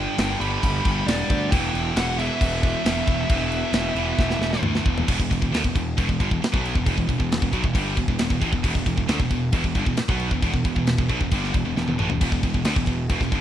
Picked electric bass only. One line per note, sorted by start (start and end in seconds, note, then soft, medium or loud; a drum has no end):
0.18 0.35 G1 loud
0.40 0.57 G1 medium
0.64 0.80 G1 loud
0.86 1.02 G1 loud
1.06 1.23 E1 loud
1.30 1.54 D2 loud
1.52 1.69 E1 loud
1.74 1.90 E1 medium
1.96 2.29 E1 loud
2.41 2.74 E1 loud
2.85 3.02 E1 loud
3.08 3.24 E1 loud
3.30 3.63 E1 loud
3.73 3.90 E1 loud
3.95 4.12 E1 loud
4.18 4.35 E1 loud
4.39 4.56 E1 loud
4.62 4.79 D2 medium
4.86 5.02 E1 loud
5.09 5.19 E1 loud
5.19 5.30 E1 medium
5.31 5.41 E1 medium
5.42 5.52 E1 medium
5.52 5.63 D2 loud
5.65 5.74 E1 medium
5.75 5.96 E1 medium
5.98 6.08 E1 loud
6.09 6.19 E1 medium
6.20 6.30 G1 loud
6.32 6.41 E1 medium
6.42 muted picked electric bass stroke soft
6.54 6.74 B1 loud
6.75 6.85 E1 medium
6.86 6.97 E1 loud
6.98 7.08 E1 medium
7.09 7.19 E1 medium
7.20 7.40 E1 medium
7.42 7.52 E1 medium
7.53 7.63 B1 loud
7.64 7.74 E1 medium
7.75 7.96 G1 loud
7.97 8.07 E1 medium
8.08 8.18 E1 medium
8.20 8.30 E1 medium
8.30 8.41 E1 medium
8.41 8.52 A1 loud
8.53 8.63 E1 medium
8.64 8.74 E1 loud
8.75 8.86 E1 medium
8.86 8.97 E1 medium
8.98 9.08 E1 medium
9.09 9.19 D2 loud
9.19 9.30 E1 medium
9.31 9.52 E1 medium
9.53 9.63 E1 loud
9.64 9.75 E1 medium
9.76 9.86 G1 loud
9.86 9.97 E1 medium
9.97 muted picked electric bass stroke soft
10.09 10.30 B1 loud
10.32 10.42 E1 medium
10.42 10.53 E1 loud
10.54 10.64 E1 medium
10.65 10.75 E1 medium
10.76 10.97 E1 medium
10.99 11.09 E1 medium
11.09 11.20 B1 medium
11.20 11.31 E1 medium
11.32 11.52 G1 loud
11.54 11.64 E1 medium
11.65 11.75 E1 medium
11.76 11.86 E1 medium
11.88 11.98 E1 medium
11.99 12.09 A1 loud
12.11 12.20 E1 medium
12.21 12.31 E1 loud
12.32 12.42 E1 medium
12.43 12.53 E1 medium
12.55 12.65 E1 medium
12.65 12.75 D2 loud
12.76 12.86 E1 medium
12.88 13.08 E1 medium
13.10 13.20 E1 loud
13.21 13.31 E1 medium
13.32 13.41 G1 loud